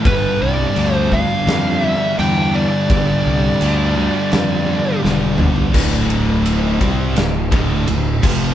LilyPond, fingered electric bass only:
\new Staff \with { instrumentName = "Fingered electric bass" } { \clef bass \time 4/4 \key d \minor \tempo 4 = 84 g,,8 c,8 d,4 f,4 e,4 | g,,8 c,8 d,4 f,4 e,,4 | d,,4. c,8 d,,8 d,,8 d,,8 f,,8 | }